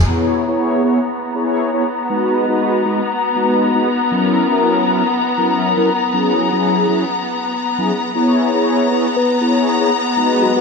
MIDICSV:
0, 0, Header, 1, 5, 480
1, 0, Start_track
1, 0, Tempo, 504202
1, 80, Time_signature, 4, 2, 24, 8
1, 10098, End_track
2, 0, Start_track
2, 0, Title_t, "String section"
2, 0, Program_c, 0, 48
2, 76, Note_on_c, 0, 59, 73
2, 78, Note_on_c, 0, 82, 70
2, 7752, Note_off_c, 0, 59, 0
2, 7752, Note_off_c, 0, 82, 0
2, 7763, Note_on_c, 0, 82, 77
2, 7764, Note_on_c, 0, 59, 77
2, 10098, Note_off_c, 0, 59, 0
2, 10098, Note_off_c, 0, 82, 0
2, 10098, End_track
3, 0, Start_track
3, 0, Title_t, "Soft synth lead"
3, 0, Program_c, 1, 80
3, 8721, Note_on_c, 1, 71, 82
3, 8923, Note_off_c, 1, 71, 0
3, 9923, Note_on_c, 1, 66, 82
3, 10005, Note_off_c, 1, 66, 0
3, 10054, Note_on_c, 1, 66, 72
3, 10098, Note_off_c, 1, 66, 0
3, 10098, End_track
4, 0, Start_track
4, 0, Title_t, "Analog polysynth"
4, 0, Program_c, 2, 90
4, 74, Note_on_c, 2, 59, 76
4, 75, Note_on_c, 2, 64, 73
4, 79, Note_on_c, 2, 68, 69
4, 83, Note_on_c, 2, 73, 85
4, 416, Note_off_c, 2, 59, 0
4, 417, Note_off_c, 2, 64, 0
4, 419, Note_off_c, 2, 68, 0
4, 421, Note_off_c, 2, 73, 0
4, 447, Note_on_c, 2, 59, 83
4, 451, Note_on_c, 2, 64, 77
4, 453, Note_on_c, 2, 68, 74
4, 456, Note_on_c, 2, 73, 88
4, 772, Note_off_c, 2, 59, 0
4, 774, Note_off_c, 2, 64, 0
4, 775, Note_off_c, 2, 68, 0
4, 776, Note_off_c, 2, 73, 0
4, 795, Note_on_c, 2, 59, 82
4, 799, Note_on_c, 2, 64, 74
4, 801, Note_on_c, 2, 68, 75
4, 803, Note_on_c, 2, 73, 88
4, 939, Note_off_c, 2, 59, 0
4, 941, Note_off_c, 2, 64, 0
4, 942, Note_off_c, 2, 68, 0
4, 944, Note_off_c, 2, 73, 0
4, 1277, Note_on_c, 2, 59, 77
4, 1278, Note_on_c, 2, 64, 68
4, 1283, Note_on_c, 2, 68, 69
4, 1286, Note_on_c, 2, 73, 80
4, 1618, Note_off_c, 2, 59, 0
4, 1618, Note_off_c, 2, 64, 0
4, 1621, Note_off_c, 2, 68, 0
4, 1622, Note_off_c, 2, 73, 0
4, 1645, Note_on_c, 2, 59, 80
4, 1648, Note_on_c, 2, 64, 74
4, 1653, Note_on_c, 2, 68, 78
4, 1655, Note_on_c, 2, 73, 92
4, 1744, Note_off_c, 2, 59, 0
4, 1745, Note_off_c, 2, 64, 0
4, 1748, Note_off_c, 2, 68, 0
4, 1749, Note_off_c, 2, 73, 0
4, 1993, Note_on_c, 2, 56, 78
4, 1996, Note_on_c, 2, 63, 72
4, 2000, Note_on_c, 2, 66, 72
4, 2003, Note_on_c, 2, 71, 84
4, 2336, Note_off_c, 2, 56, 0
4, 2338, Note_off_c, 2, 63, 0
4, 2339, Note_off_c, 2, 66, 0
4, 2341, Note_off_c, 2, 71, 0
4, 2363, Note_on_c, 2, 56, 83
4, 2366, Note_on_c, 2, 63, 76
4, 2369, Note_on_c, 2, 66, 77
4, 2373, Note_on_c, 2, 71, 91
4, 2690, Note_off_c, 2, 56, 0
4, 2691, Note_off_c, 2, 63, 0
4, 2693, Note_off_c, 2, 66, 0
4, 2695, Note_off_c, 2, 71, 0
4, 2711, Note_on_c, 2, 56, 81
4, 2713, Note_on_c, 2, 63, 74
4, 2718, Note_on_c, 2, 66, 77
4, 2720, Note_on_c, 2, 71, 85
4, 2857, Note_off_c, 2, 56, 0
4, 2859, Note_off_c, 2, 63, 0
4, 2861, Note_off_c, 2, 66, 0
4, 2862, Note_off_c, 2, 71, 0
4, 3193, Note_on_c, 2, 56, 77
4, 3195, Note_on_c, 2, 63, 67
4, 3199, Note_on_c, 2, 66, 69
4, 3202, Note_on_c, 2, 71, 84
4, 3536, Note_off_c, 2, 56, 0
4, 3537, Note_off_c, 2, 63, 0
4, 3539, Note_off_c, 2, 66, 0
4, 3540, Note_off_c, 2, 71, 0
4, 3564, Note_on_c, 2, 56, 84
4, 3567, Note_on_c, 2, 63, 77
4, 3569, Note_on_c, 2, 66, 76
4, 3573, Note_on_c, 2, 71, 94
4, 3690, Note_off_c, 2, 56, 0
4, 3691, Note_off_c, 2, 63, 0
4, 3692, Note_off_c, 2, 66, 0
4, 3694, Note_off_c, 2, 71, 0
4, 3915, Note_on_c, 2, 54, 81
4, 3917, Note_on_c, 2, 61, 71
4, 3922, Note_on_c, 2, 64, 70
4, 3925, Note_on_c, 2, 70, 89
4, 4257, Note_off_c, 2, 54, 0
4, 4258, Note_off_c, 2, 61, 0
4, 4260, Note_off_c, 2, 64, 0
4, 4262, Note_off_c, 2, 70, 0
4, 4285, Note_on_c, 2, 54, 79
4, 4289, Note_on_c, 2, 61, 77
4, 4291, Note_on_c, 2, 64, 75
4, 4295, Note_on_c, 2, 70, 90
4, 4611, Note_off_c, 2, 54, 0
4, 4613, Note_off_c, 2, 61, 0
4, 4614, Note_off_c, 2, 64, 0
4, 4616, Note_off_c, 2, 70, 0
4, 4634, Note_on_c, 2, 54, 80
4, 4637, Note_on_c, 2, 61, 74
4, 4640, Note_on_c, 2, 64, 76
4, 4644, Note_on_c, 2, 70, 88
4, 4779, Note_off_c, 2, 54, 0
4, 4781, Note_off_c, 2, 61, 0
4, 4782, Note_off_c, 2, 64, 0
4, 4784, Note_off_c, 2, 70, 0
4, 5114, Note_on_c, 2, 54, 76
4, 5116, Note_on_c, 2, 61, 69
4, 5118, Note_on_c, 2, 64, 68
4, 5122, Note_on_c, 2, 70, 84
4, 5457, Note_off_c, 2, 54, 0
4, 5458, Note_off_c, 2, 61, 0
4, 5458, Note_off_c, 2, 64, 0
4, 5461, Note_off_c, 2, 70, 0
4, 5485, Note_on_c, 2, 54, 82
4, 5488, Note_on_c, 2, 61, 80
4, 5491, Note_on_c, 2, 64, 81
4, 5493, Note_on_c, 2, 70, 94
4, 5610, Note_off_c, 2, 54, 0
4, 5612, Note_off_c, 2, 61, 0
4, 5613, Note_off_c, 2, 64, 0
4, 5614, Note_off_c, 2, 70, 0
4, 5834, Note_on_c, 2, 54, 76
4, 5836, Note_on_c, 2, 61, 72
4, 5841, Note_on_c, 2, 64, 68
4, 5843, Note_on_c, 2, 68, 84
4, 6176, Note_off_c, 2, 54, 0
4, 6178, Note_off_c, 2, 61, 0
4, 6180, Note_off_c, 2, 64, 0
4, 6181, Note_off_c, 2, 68, 0
4, 6207, Note_on_c, 2, 54, 79
4, 6210, Note_on_c, 2, 61, 73
4, 6214, Note_on_c, 2, 64, 76
4, 6215, Note_on_c, 2, 68, 89
4, 6531, Note_off_c, 2, 54, 0
4, 6533, Note_off_c, 2, 61, 0
4, 6535, Note_off_c, 2, 64, 0
4, 6536, Note_off_c, 2, 68, 0
4, 6554, Note_on_c, 2, 54, 79
4, 6558, Note_on_c, 2, 61, 72
4, 6559, Note_on_c, 2, 64, 72
4, 6563, Note_on_c, 2, 68, 88
4, 6699, Note_off_c, 2, 54, 0
4, 6701, Note_off_c, 2, 61, 0
4, 6702, Note_off_c, 2, 64, 0
4, 6704, Note_off_c, 2, 68, 0
4, 7406, Note_on_c, 2, 54, 78
4, 7408, Note_on_c, 2, 61, 75
4, 7413, Note_on_c, 2, 64, 74
4, 7414, Note_on_c, 2, 68, 93
4, 7531, Note_off_c, 2, 54, 0
4, 7532, Note_off_c, 2, 61, 0
4, 7534, Note_off_c, 2, 64, 0
4, 7535, Note_off_c, 2, 68, 0
4, 7754, Note_on_c, 2, 59, 78
4, 7757, Note_on_c, 2, 64, 74
4, 7760, Note_on_c, 2, 68, 68
4, 7764, Note_on_c, 2, 73, 83
4, 8097, Note_off_c, 2, 59, 0
4, 8098, Note_off_c, 2, 64, 0
4, 8100, Note_off_c, 2, 68, 0
4, 8102, Note_off_c, 2, 73, 0
4, 8126, Note_on_c, 2, 59, 77
4, 8129, Note_on_c, 2, 64, 74
4, 8130, Note_on_c, 2, 68, 75
4, 8133, Note_on_c, 2, 73, 88
4, 8451, Note_off_c, 2, 59, 0
4, 8453, Note_off_c, 2, 64, 0
4, 8453, Note_off_c, 2, 68, 0
4, 8455, Note_off_c, 2, 73, 0
4, 8477, Note_on_c, 2, 59, 81
4, 8478, Note_on_c, 2, 64, 74
4, 8482, Note_on_c, 2, 68, 78
4, 8485, Note_on_c, 2, 73, 85
4, 8620, Note_off_c, 2, 59, 0
4, 8621, Note_off_c, 2, 64, 0
4, 8623, Note_off_c, 2, 68, 0
4, 8624, Note_off_c, 2, 73, 0
4, 8954, Note_on_c, 2, 59, 75
4, 8958, Note_on_c, 2, 64, 73
4, 8959, Note_on_c, 2, 68, 73
4, 8963, Note_on_c, 2, 73, 83
4, 9296, Note_off_c, 2, 59, 0
4, 9298, Note_off_c, 2, 64, 0
4, 9299, Note_off_c, 2, 68, 0
4, 9301, Note_off_c, 2, 73, 0
4, 9325, Note_on_c, 2, 59, 85
4, 9329, Note_on_c, 2, 64, 77
4, 9331, Note_on_c, 2, 68, 77
4, 9334, Note_on_c, 2, 73, 94
4, 9424, Note_off_c, 2, 59, 0
4, 9426, Note_off_c, 2, 64, 0
4, 9427, Note_off_c, 2, 68, 0
4, 9428, Note_off_c, 2, 73, 0
4, 9675, Note_on_c, 2, 56, 79
4, 9679, Note_on_c, 2, 63, 69
4, 9681, Note_on_c, 2, 66, 72
4, 9685, Note_on_c, 2, 71, 85
4, 10017, Note_off_c, 2, 56, 0
4, 10019, Note_off_c, 2, 63, 0
4, 10020, Note_off_c, 2, 66, 0
4, 10022, Note_off_c, 2, 71, 0
4, 10048, Note_on_c, 2, 56, 84
4, 10051, Note_on_c, 2, 63, 76
4, 10055, Note_on_c, 2, 66, 77
4, 10057, Note_on_c, 2, 71, 95
4, 10098, Note_off_c, 2, 56, 0
4, 10098, Note_off_c, 2, 63, 0
4, 10098, Note_off_c, 2, 66, 0
4, 10098, Note_off_c, 2, 71, 0
4, 10098, End_track
5, 0, Start_track
5, 0, Title_t, "Drums"
5, 82, Note_on_c, 9, 49, 73
5, 178, Note_off_c, 9, 49, 0
5, 10098, End_track
0, 0, End_of_file